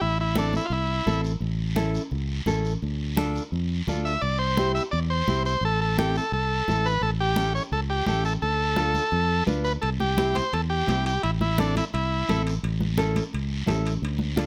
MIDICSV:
0, 0, Header, 1, 5, 480
1, 0, Start_track
1, 0, Tempo, 350263
1, 33, Time_signature, 4, 2, 24, 8
1, 19819, End_track
2, 0, Start_track
2, 0, Title_t, "Transistor combo organ"
2, 0, Program_c, 0, 18
2, 18, Note_on_c, 0, 64, 90
2, 248, Note_off_c, 0, 64, 0
2, 282, Note_on_c, 0, 64, 77
2, 501, Note_off_c, 0, 64, 0
2, 528, Note_on_c, 0, 62, 70
2, 745, Note_off_c, 0, 62, 0
2, 774, Note_on_c, 0, 64, 79
2, 896, Note_on_c, 0, 65, 53
2, 912, Note_off_c, 0, 64, 0
2, 992, Note_on_c, 0, 64, 76
2, 993, Note_off_c, 0, 65, 0
2, 1663, Note_off_c, 0, 64, 0
2, 5551, Note_on_c, 0, 76, 97
2, 5777, Note_off_c, 0, 76, 0
2, 5777, Note_on_c, 0, 74, 101
2, 6009, Note_off_c, 0, 74, 0
2, 6012, Note_on_c, 0, 72, 93
2, 6470, Note_off_c, 0, 72, 0
2, 6507, Note_on_c, 0, 76, 93
2, 6617, Note_off_c, 0, 76, 0
2, 6734, Note_on_c, 0, 74, 102
2, 6847, Note_off_c, 0, 74, 0
2, 6991, Note_on_c, 0, 72, 91
2, 7440, Note_off_c, 0, 72, 0
2, 7483, Note_on_c, 0, 72, 96
2, 7727, Note_off_c, 0, 72, 0
2, 7742, Note_on_c, 0, 69, 98
2, 7952, Note_off_c, 0, 69, 0
2, 7968, Note_on_c, 0, 69, 89
2, 8186, Note_off_c, 0, 69, 0
2, 8200, Note_on_c, 0, 67, 75
2, 8446, Note_off_c, 0, 67, 0
2, 8460, Note_on_c, 0, 69, 85
2, 8663, Note_off_c, 0, 69, 0
2, 8679, Note_on_c, 0, 69, 89
2, 9397, Note_on_c, 0, 71, 92
2, 9420, Note_off_c, 0, 69, 0
2, 9620, Note_off_c, 0, 71, 0
2, 9627, Note_on_c, 0, 69, 96
2, 9737, Note_off_c, 0, 69, 0
2, 9872, Note_on_c, 0, 67, 98
2, 10321, Note_off_c, 0, 67, 0
2, 10343, Note_on_c, 0, 73, 93
2, 10454, Note_off_c, 0, 73, 0
2, 10585, Note_on_c, 0, 69, 98
2, 10696, Note_off_c, 0, 69, 0
2, 10824, Note_on_c, 0, 67, 78
2, 11040, Note_off_c, 0, 67, 0
2, 11057, Note_on_c, 0, 67, 80
2, 11290, Note_off_c, 0, 67, 0
2, 11310, Note_on_c, 0, 69, 88
2, 11419, Note_off_c, 0, 69, 0
2, 11541, Note_on_c, 0, 69, 98
2, 12934, Note_off_c, 0, 69, 0
2, 13218, Note_on_c, 0, 71, 82
2, 13330, Note_off_c, 0, 71, 0
2, 13452, Note_on_c, 0, 69, 94
2, 13565, Note_off_c, 0, 69, 0
2, 13708, Note_on_c, 0, 67, 80
2, 14187, Note_on_c, 0, 72, 87
2, 14207, Note_off_c, 0, 67, 0
2, 14438, Note_on_c, 0, 69, 83
2, 14439, Note_off_c, 0, 72, 0
2, 14545, Note_off_c, 0, 69, 0
2, 14660, Note_on_c, 0, 67, 80
2, 15142, Note_off_c, 0, 67, 0
2, 15159, Note_on_c, 0, 67, 80
2, 15381, Note_off_c, 0, 67, 0
2, 15388, Note_on_c, 0, 64, 88
2, 15498, Note_off_c, 0, 64, 0
2, 15641, Note_on_c, 0, 64, 75
2, 15886, Note_off_c, 0, 64, 0
2, 15894, Note_on_c, 0, 62, 71
2, 16108, Note_off_c, 0, 62, 0
2, 16132, Note_on_c, 0, 64, 78
2, 16236, Note_off_c, 0, 64, 0
2, 16358, Note_on_c, 0, 64, 70
2, 17026, Note_off_c, 0, 64, 0
2, 19819, End_track
3, 0, Start_track
3, 0, Title_t, "Nylon-string guitar"
3, 0, Program_c, 1, 24
3, 496, Note_on_c, 1, 60, 72
3, 504, Note_on_c, 1, 64, 61
3, 510, Note_on_c, 1, 69, 71
3, 841, Note_off_c, 1, 60, 0
3, 845, Note_off_c, 1, 64, 0
3, 848, Note_off_c, 1, 69, 0
3, 1450, Note_on_c, 1, 60, 61
3, 1458, Note_on_c, 1, 64, 59
3, 1463, Note_on_c, 1, 69, 68
3, 1799, Note_off_c, 1, 60, 0
3, 1801, Note_off_c, 1, 64, 0
3, 1805, Note_off_c, 1, 69, 0
3, 2403, Note_on_c, 1, 61, 77
3, 2409, Note_on_c, 1, 64, 74
3, 2416, Note_on_c, 1, 69, 90
3, 2755, Note_off_c, 1, 61, 0
3, 2759, Note_off_c, 1, 64, 0
3, 2761, Note_off_c, 1, 69, 0
3, 3376, Note_on_c, 1, 61, 75
3, 3386, Note_on_c, 1, 64, 63
3, 3388, Note_on_c, 1, 69, 86
3, 3724, Note_off_c, 1, 61, 0
3, 3724, Note_off_c, 1, 64, 0
3, 3728, Note_off_c, 1, 69, 0
3, 4338, Note_on_c, 1, 62, 84
3, 4345, Note_on_c, 1, 69, 95
3, 4348, Note_on_c, 1, 65, 70
3, 4684, Note_off_c, 1, 62, 0
3, 4686, Note_off_c, 1, 65, 0
3, 4687, Note_off_c, 1, 69, 0
3, 5314, Note_on_c, 1, 62, 75
3, 5319, Note_on_c, 1, 65, 61
3, 5326, Note_on_c, 1, 69, 79
3, 5651, Note_off_c, 1, 62, 0
3, 5655, Note_off_c, 1, 65, 0
3, 5655, Note_off_c, 1, 69, 0
3, 6267, Note_on_c, 1, 60, 71
3, 6278, Note_on_c, 1, 67, 74
3, 6283, Note_on_c, 1, 64, 58
3, 6608, Note_off_c, 1, 60, 0
3, 6614, Note_off_c, 1, 64, 0
3, 6615, Note_off_c, 1, 67, 0
3, 7234, Note_on_c, 1, 60, 58
3, 7244, Note_on_c, 1, 64, 54
3, 7245, Note_on_c, 1, 67, 72
3, 7572, Note_off_c, 1, 60, 0
3, 7574, Note_off_c, 1, 64, 0
3, 7577, Note_off_c, 1, 67, 0
3, 8189, Note_on_c, 1, 60, 74
3, 8195, Note_on_c, 1, 64, 59
3, 8207, Note_on_c, 1, 69, 75
3, 8529, Note_off_c, 1, 60, 0
3, 8532, Note_off_c, 1, 64, 0
3, 8538, Note_off_c, 1, 69, 0
3, 9158, Note_on_c, 1, 60, 61
3, 9164, Note_on_c, 1, 64, 63
3, 9170, Note_on_c, 1, 69, 71
3, 9494, Note_off_c, 1, 60, 0
3, 9497, Note_off_c, 1, 64, 0
3, 9499, Note_off_c, 1, 69, 0
3, 10093, Note_on_c, 1, 61, 71
3, 10101, Note_on_c, 1, 64, 60
3, 10108, Note_on_c, 1, 69, 75
3, 10441, Note_off_c, 1, 61, 0
3, 10446, Note_off_c, 1, 64, 0
3, 10448, Note_off_c, 1, 69, 0
3, 11066, Note_on_c, 1, 61, 63
3, 11072, Note_on_c, 1, 64, 59
3, 11079, Note_on_c, 1, 69, 68
3, 11407, Note_off_c, 1, 61, 0
3, 11412, Note_off_c, 1, 64, 0
3, 11412, Note_off_c, 1, 69, 0
3, 12018, Note_on_c, 1, 62, 68
3, 12021, Note_on_c, 1, 65, 60
3, 12029, Note_on_c, 1, 69, 75
3, 12364, Note_off_c, 1, 62, 0
3, 12365, Note_off_c, 1, 65, 0
3, 12366, Note_off_c, 1, 69, 0
3, 12966, Note_on_c, 1, 62, 73
3, 12973, Note_on_c, 1, 65, 60
3, 12974, Note_on_c, 1, 71, 82
3, 13318, Note_off_c, 1, 62, 0
3, 13319, Note_off_c, 1, 65, 0
3, 13322, Note_off_c, 1, 71, 0
3, 13931, Note_on_c, 1, 60, 74
3, 13940, Note_on_c, 1, 67, 76
3, 13944, Note_on_c, 1, 64, 63
3, 14280, Note_off_c, 1, 60, 0
3, 14285, Note_off_c, 1, 64, 0
3, 14285, Note_off_c, 1, 67, 0
3, 14894, Note_on_c, 1, 60, 67
3, 14904, Note_on_c, 1, 64, 53
3, 14904, Note_on_c, 1, 67, 67
3, 15241, Note_off_c, 1, 60, 0
3, 15245, Note_off_c, 1, 64, 0
3, 15247, Note_off_c, 1, 67, 0
3, 15865, Note_on_c, 1, 60, 70
3, 15872, Note_on_c, 1, 64, 65
3, 15880, Note_on_c, 1, 69, 73
3, 16206, Note_off_c, 1, 60, 0
3, 16211, Note_off_c, 1, 64, 0
3, 16212, Note_off_c, 1, 69, 0
3, 16831, Note_on_c, 1, 60, 64
3, 16838, Note_on_c, 1, 64, 59
3, 16847, Note_on_c, 1, 69, 63
3, 17169, Note_off_c, 1, 60, 0
3, 17174, Note_off_c, 1, 64, 0
3, 17175, Note_off_c, 1, 69, 0
3, 17779, Note_on_c, 1, 61, 81
3, 17784, Note_on_c, 1, 64, 73
3, 17789, Note_on_c, 1, 69, 96
3, 18123, Note_off_c, 1, 61, 0
3, 18124, Note_off_c, 1, 64, 0
3, 18128, Note_off_c, 1, 69, 0
3, 18722, Note_on_c, 1, 61, 75
3, 18730, Note_on_c, 1, 64, 66
3, 18738, Note_on_c, 1, 69, 79
3, 19074, Note_off_c, 1, 61, 0
3, 19078, Note_off_c, 1, 64, 0
3, 19082, Note_off_c, 1, 69, 0
3, 19683, Note_on_c, 1, 62, 86
3, 19689, Note_on_c, 1, 65, 75
3, 19697, Note_on_c, 1, 69, 85
3, 19819, Note_off_c, 1, 62, 0
3, 19819, Note_off_c, 1, 65, 0
3, 19819, Note_off_c, 1, 69, 0
3, 19819, End_track
4, 0, Start_track
4, 0, Title_t, "Fingered electric bass"
4, 0, Program_c, 2, 33
4, 19, Note_on_c, 2, 33, 92
4, 793, Note_off_c, 2, 33, 0
4, 960, Note_on_c, 2, 36, 87
4, 1358, Note_off_c, 2, 36, 0
4, 1458, Note_on_c, 2, 33, 91
4, 1849, Note_off_c, 2, 33, 0
4, 1923, Note_on_c, 2, 33, 92
4, 2704, Note_off_c, 2, 33, 0
4, 2898, Note_on_c, 2, 37, 88
4, 3289, Note_off_c, 2, 37, 0
4, 3372, Note_on_c, 2, 33, 89
4, 3765, Note_off_c, 2, 33, 0
4, 3869, Note_on_c, 2, 38, 96
4, 4640, Note_off_c, 2, 38, 0
4, 4823, Note_on_c, 2, 41, 82
4, 5213, Note_off_c, 2, 41, 0
4, 5307, Note_on_c, 2, 38, 88
4, 5695, Note_off_c, 2, 38, 0
4, 5786, Note_on_c, 2, 36, 93
4, 6559, Note_off_c, 2, 36, 0
4, 6754, Note_on_c, 2, 40, 82
4, 7139, Note_off_c, 2, 40, 0
4, 7229, Note_on_c, 2, 36, 90
4, 7616, Note_off_c, 2, 36, 0
4, 7688, Note_on_c, 2, 33, 97
4, 8468, Note_off_c, 2, 33, 0
4, 8660, Note_on_c, 2, 36, 83
4, 9051, Note_off_c, 2, 36, 0
4, 9156, Note_on_c, 2, 33, 90
4, 9540, Note_off_c, 2, 33, 0
4, 9610, Note_on_c, 2, 33, 95
4, 10389, Note_off_c, 2, 33, 0
4, 10576, Note_on_c, 2, 37, 89
4, 10969, Note_off_c, 2, 37, 0
4, 11068, Note_on_c, 2, 33, 91
4, 11456, Note_off_c, 2, 33, 0
4, 11541, Note_on_c, 2, 38, 88
4, 12315, Note_off_c, 2, 38, 0
4, 12497, Note_on_c, 2, 41, 87
4, 12889, Note_off_c, 2, 41, 0
4, 12981, Note_on_c, 2, 38, 89
4, 13371, Note_off_c, 2, 38, 0
4, 13472, Note_on_c, 2, 36, 87
4, 14242, Note_off_c, 2, 36, 0
4, 14430, Note_on_c, 2, 40, 81
4, 14816, Note_off_c, 2, 40, 0
4, 14911, Note_on_c, 2, 36, 96
4, 15297, Note_off_c, 2, 36, 0
4, 15400, Note_on_c, 2, 33, 99
4, 16166, Note_off_c, 2, 33, 0
4, 16361, Note_on_c, 2, 36, 83
4, 16743, Note_off_c, 2, 36, 0
4, 16847, Note_on_c, 2, 33, 88
4, 17226, Note_off_c, 2, 33, 0
4, 17311, Note_on_c, 2, 33, 99
4, 18080, Note_off_c, 2, 33, 0
4, 18281, Note_on_c, 2, 37, 80
4, 18663, Note_off_c, 2, 37, 0
4, 18745, Note_on_c, 2, 33, 82
4, 19132, Note_off_c, 2, 33, 0
4, 19214, Note_on_c, 2, 38, 99
4, 19819, Note_off_c, 2, 38, 0
4, 19819, End_track
5, 0, Start_track
5, 0, Title_t, "Drums"
5, 17, Note_on_c, 9, 63, 34
5, 37, Note_on_c, 9, 74, 63
5, 154, Note_off_c, 9, 63, 0
5, 174, Note_off_c, 9, 74, 0
5, 486, Note_on_c, 9, 63, 88
5, 512, Note_on_c, 9, 73, 59
5, 624, Note_off_c, 9, 63, 0
5, 649, Note_off_c, 9, 73, 0
5, 729, Note_on_c, 9, 63, 60
5, 751, Note_on_c, 9, 73, 66
5, 866, Note_off_c, 9, 63, 0
5, 888, Note_off_c, 9, 73, 0
5, 973, Note_on_c, 9, 63, 33
5, 986, Note_on_c, 9, 74, 71
5, 1110, Note_off_c, 9, 63, 0
5, 1123, Note_off_c, 9, 74, 0
5, 1465, Note_on_c, 9, 73, 71
5, 1467, Note_on_c, 9, 63, 78
5, 1602, Note_off_c, 9, 73, 0
5, 1604, Note_off_c, 9, 63, 0
5, 1699, Note_on_c, 9, 73, 65
5, 1836, Note_off_c, 9, 73, 0
5, 1932, Note_on_c, 9, 63, 34
5, 1946, Note_on_c, 9, 74, 66
5, 2069, Note_off_c, 9, 63, 0
5, 2083, Note_off_c, 9, 74, 0
5, 2414, Note_on_c, 9, 63, 87
5, 2432, Note_on_c, 9, 73, 54
5, 2551, Note_off_c, 9, 63, 0
5, 2569, Note_off_c, 9, 73, 0
5, 2663, Note_on_c, 9, 73, 66
5, 2800, Note_off_c, 9, 73, 0
5, 2893, Note_on_c, 9, 63, 29
5, 2905, Note_on_c, 9, 74, 64
5, 3030, Note_off_c, 9, 63, 0
5, 3042, Note_off_c, 9, 74, 0
5, 3373, Note_on_c, 9, 63, 77
5, 3386, Note_on_c, 9, 73, 75
5, 3510, Note_off_c, 9, 63, 0
5, 3523, Note_off_c, 9, 73, 0
5, 3628, Note_on_c, 9, 73, 65
5, 3765, Note_off_c, 9, 73, 0
5, 3867, Note_on_c, 9, 74, 67
5, 3873, Note_on_c, 9, 63, 32
5, 4004, Note_off_c, 9, 74, 0
5, 4010, Note_off_c, 9, 63, 0
5, 4348, Note_on_c, 9, 63, 88
5, 4362, Note_on_c, 9, 73, 62
5, 4485, Note_off_c, 9, 63, 0
5, 4499, Note_off_c, 9, 73, 0
5, 4595, Note_on_c, 9, 73, 66
5, 4732, Note_off_c, 9, 73, 0
5, 4836, Note_on_c, 9, 63, 34
5, 4847, Note_on_c, 9, 74, 67
5, 4973, Note_off_c, 9, 63, 0
5, 4984, Note_off_c, 9, 74, 0
5, 5313, Note_on_c, 9, 63, 72
5, 5321, Note_on_c, 9, 73, 68
5, 5450, Note_off_c, 9, 63, 0
5, 5458, Note_off_c, 9, 73, 0
5, 5559, Note_on_c, 9, 73, 59
5, 5696, Note_off_c, 9, 73, 0
5, 5787, Note_on_c, 9, 63, 33
5, 5794, Note_on_c, 9, 74, 60
5, 5925, Note_off_c, 9, 63, 0
5, 5931, Note_off_c, 9, 74, 0
5, 6267, Note_on_c, 9, 63, 81
5, 6274, Note_on_c, 9, 73, 54
5, 6404, Note_off_c, 9, 63, 0
5, 6411, Note_off_c, 9, 73, 0
5, 6519, Note_on_c, 9, 73, 63
5, 6656, Note_off_c, 9, 73, 0
5, 6759, Note_on_c, 9, 74, 75
5, 6760, Note_on_c, 9, 63, 32
5, 6896, Note_off_c, 9, 74, 0
5, 6897, Note_off_c, 9, 63, 0
5, 7232, Note_on_c, 9, 63, 77
5, 7235, Note_on_c, 9, 73, 69
5, 7369, Note_off_c, 9, 63, 0
5, 7372, Note_off_c, 9, 73, 0
5, 7475, Note_on_c, 9, 73, 66
5, 7612, Note_off_c, 9, 73, 0
5, 7708, Note_on_c, 9, 63, 33
5, 7717, Note_on_c, 9, 74, 67
5, 7845, Note_off_c, 9, 63, 0
5, 7854, Note_off_c, 9, 74, 0
5, 8195, Note_on_c, 9, 73, 60
5, 8203, Note_on_c, 9, 63, 88
5, 8332, Note_off_c, 9, 73, 0
5, 8340, Note_off_c, 9, 63, 0
5, 8435, Note_on_c, 9, 73, 65
5, 8572, Note_off_c, 9, 73, 0
5, 8679, Note_on_c, 9, 74, 64
5, 8680, Note_on_c, 9, 63, 32
5, 8816, Note_off_c, 9, 74, 0
5, 8817, Note_off_c, 9, 63, 0
5, 9155, Note_on_c, 9, 63, 78
5, 9165, Note_on_c, 9, 73, 72
5, 9292, Note_off_c, 9, 63, 0
5, 9302, Note_off_c, 9, 73, 0
5, 9400, Note_on_c, 9, 73, 67
5, 9537, Note_off_c, 9, 73, 0
5, 9632, Note_on_c, 9, 63, 34
5, 9637, Note_on_c, 9, 74, 68
5, 9769, Note_off_c, 9, 63, 0
5, 9774, Note_off_c, 9, 74, 0
5, 10088, Note_on_c, 9, 63, 90
5, 10111, Note_on_c, 9, 73, 66
5, 10226, Note_off_c, 9, 63, 0
5, 10248, Note_off_c, 9, 73, 0
5, 10359, Note_on_c, 9, 73, 61
5, 10496, Note_off_c, 9, 73, 0
5, 10583, Note_on_c, 9, 63, 34
5, 10589, Note_on_c, 9, 74, 75
5, 10720, Note_off_c, 9, 63, 0
5, 10726, Note_off_c, 9, 74, 0
5, 11051, Note_on_c, 9, 63, 77
5, 11072, Note_on_c, 9, 73, 73
5, 11188, Note_off_c, 9, 63, 0
5, 11209, Note_off_c, 9, 73, 0
5, 11303, Note_on_c, 9, 73, 68
5, 11440, Note_off_c, 9, 73, 0
5, 11541, Note_on_c, 9, 63, 30
5, 11548, Note_on_c, 9, 74, 67
5, 11679, Note_off_c, 9, 63, 0
5, 11685, Note_off_c, 9, 74, 0
5, 12009, Note_on_c, 9, 63, 86
5, 12030, Note_on_c, 9, 73, 58
5, 12146, Note_off_c, 9, 63, 0
5, 12167, Note_off_c, 9, 73, 0
5, 12258, Note_on_c, 9, 63, 58
5, 12265, Note_on_c, 9, 73, 68
5, 12395, Note_off_c, 9, 63, 0
5, 12402, Note_off_c, 9, 73, 0
5, 12497, Note_on_c, 9, 74, 67
5, 12498, Note_on_c, 9, 63, 30
5, 12634, Note_off_c, 9, 74, 0
5, 12635, Note_off_c, 9, 63, 0
5, 12973, Note_on_c, 9, 73, 71
5, 12982, Note_on_c, 9, 63, 76
5, 13110, Note_off_c, 9, 73, 0
5, 13119, Note_off_c, 9, 63, 0
5, 13212, Note_on_c, 9, 73, 68
5, 13349, Note_off_c, 9, 73, 0
5, 13456, Note_on_c, 9, 63, 35
5, 13456, Note_on_c, 9, 74, 62
5, 13467, Note_on_c, 9, 65, 62
5, 13593, Note_off_c, 9, 63, 0
5, 13593, Note_off_c, 9, 74, 0
5, 13604, Note_off_c, 9, 65, 0
5, 13704, Note_on_c, 9, 63, 72
5, 13841, Note_off_c, 9, 63, 0
5, 13943, Note_on_c, 9, 73, 61
5, 13947, Note_on_c, 9, 63, 90
5, 13949, Note_on_c, 9, 65, 66
5, 14080, Note_off_c, 9, 73, 0
5, 14084, Note_off_c, 9, 63, 0
5, 14086, Note_off_c, 9, 65, 0
5, 14187, Note_on_c, 9, 63, 66
5, 14189, Note_on_c, 9, 73, 65
5, 14198, Note_on_c, 9, 65, 71
5, 14324, Note_off_c, 9, 63, 0
5, 14326, Note_off_c, 9, 73, 0
5, 14335, Note_off_c, 9, 65, 0
5, 14425, Note_on_c, 9, 74, 75
5, 14436, Note_on_c, 9, 65, 64
5, 14442, Note_on_c, 9, 63, 31
5, 14562, Note_off_c, 9, 74, 0
5, 14573, Note_off_c, 9, 65, 0
5, 14579, Note_off_c, 9, 63, 0
5, 14909, Note_on_c, 9, 73, 70
5, 14913, Note_on_c, 9, 63, 77
5, 14923, Note_on_c, 9, 65, 64
5, 14923, Note_on_c, 9, 66, 62
5, 15046, Note_off_c, 9, 73, 0
5, 15050, Note_off_c, 9, 63, 0
5, 15060, Note_off_c, 9, 65, 0
5, 15060, Note_off_c, 9, 66, 0
5, 15158, Note_on_c, 9, 65, 65
5, 15160, Note_on_c, 9, 73, 71
5, 15295, Note_off_c, 9, 65, 0
5, 15297, Note_off_c, 9, 73, 0
5, 15396, Note_on_c, 9, 65, 71
5, 15398, Note_on_c, 9, 63, 30
5, 15402, Note_on_c, 9, 74, 65
5, 15533, Note_off_c, 9, 65, 0
5, 15535, Note_off_c, 9, 63, 0
5, 15539, Note_off_c, 9, 74, 0
5, 15635, Note_on_c, 9, 63, 67
5, 15772, Note_off_c, 9, 63, 0
5, 15871, Note_on_c, 9, 63, 90
5, 15878, Note_on_c, 9, 65, 64
5, 15891, Note_on_c, 9, 73, 58
5, 16008, Note_off_c, 9, 63, 0
5, 16015, Note_off_c, 9, 65, 0
5, 16028, Note_off_c, 9, 73, 0
5, 16118, Note_on_c, 9, 63, 61
5, 16126, Note_on_c, 9, 73, 71
5, 16128, Note_on_c, 9, 65, 70
5, 16255, Note_off_c, 9, 63, 0
5, 16263, Note_off_c, 9, 73, 0
5, 16265, Note_off_c, 9, 65, 0
5, 16354, Note_on_c, 9, 63, 33
5, 16362, Note_on_c, 9, 74, 69
5, 16371, Note_on_c, 9, 65, 65
5, 16491, Note_off_c, 9, 63, 0
5, 16499, Note_off_c, 9, 74, 0
5, 16508, Note_off_c, 9, 65, 0
5, 16846, Note_on_c, 9, 65, 64
5, 16848, Note_on_c, 9, 63, 70
5, 16851, Note_on_c, 9, 73, 69
5, 16983, Note_off_c, 9, 65, 0
5, 16985, Note_off_c, 9, 63, 0
5, 16988, Note_off_c, 9, 73, 0
5, 17085, Note_on_c, 9, 65, 67
5, 17092, Note_on_c, 9, 73, 65
5, 17222, Note_off_c, 9, 65, 0
5, 17229, Note_off_c, 9, 73, 0
5, 17322, Note_on_c, 9, 65, 67
5, 17326, Note_on_c, 9, 63, 31
5, 17327, Note_on_c, 9, 74, 70
5, 17459, Note_off_c, 9, 65, 0
5, 17463, Note_off_c, 9, 63, 0
5, 17464, Note_off_c, 9, 74, 0
5, 17548, Note_on_c, 9, 63, 72
5, 17685, Note_off_c, 9, 63, 0
5, 17782, Note_on_c, 9, 63, 89
5, 17804, Note_on_c, 9, 65, 61
5, 17804, Note_on_c, 9, 73, 61
5, 17919, Note_off_c, 9, 63, 0
5, 17941, Note_off_c, 9, 73, 0
5, 17942, Note_off_c, 9, 65, 0
5, 18032, Note_on_c, 9, 63, 65
5, 18034, Note_on_c, 9, 73, 63
5, 18037, Note_on_c, 9, 65, 65
5, 18169, Note_off_c, 9, 63, 0
5, 18171, Note_off_c, 9, 73, 0
5, 18174, Note_off_c, 9, 65, 0
5, 18269, Note_on_c, 9, 74, 69
5, 18274, Note_on_c, 9, 63, 33
5, 18288, Note_on_c, 9, 65, 63
5, 18406, Note_off_c, 9, 74, 0
5, 18411, Note_off_c, 9, 63, 0
5, 18425, Note_off_c, 9, 65, 0
5, 18739, Note_on_c, 9, 63, 81
5, 18748, Note_on_c, 9, 73, 70
5, 18753, Note_on_c, 9, 65, 59
5, 18753, Note_on_c, 9, 66, 65
5, 18876, Note_off_c, 9, 63, 0
5, 18885, Note_off_c, 9, 73, 0
5, 18890, Note_off_c, 9, 65, 0
5, 18890, Note_off_c, 9, 66, 0
5, 18987, Note_on_c, 9, 73, 69
5, 19002, Note_on_c, 9, 65, 65
5, 19124, Note_off_c, 9, 73, 0
5, 19139, Note_off_c, 9, 65, 0
5, 19224, Note_on_c, 9, 74, 64
5, 19229, Note_on_c, 9, 63, 34
5, 19249, Note_on_c, 9, 65, 65
5, 19361, Note_off_c, 9, 74, 0
5, 19366, Note_off_c, 9, 63, 0
5, 19386, Note_off_c, 9, 65, 0
5, 19442, Note_on_c, 9, 63, 69
5, 19579, Note_off_c, 9, 63, 0
5, 19696, Note_on_c, 9, 63, 92
5, 19712, Note_on_c, 9, 73, 60
5, 19715, Note_on_c, 9, 65, 63
5, 19819, Note_off_c, 9, 63, 0
5, 19819, Note_off_c, 9, 65, 0
5, 19819, Note_off_c, 9, 73, 0
5, 19819, End_track
0, 0, End_of_file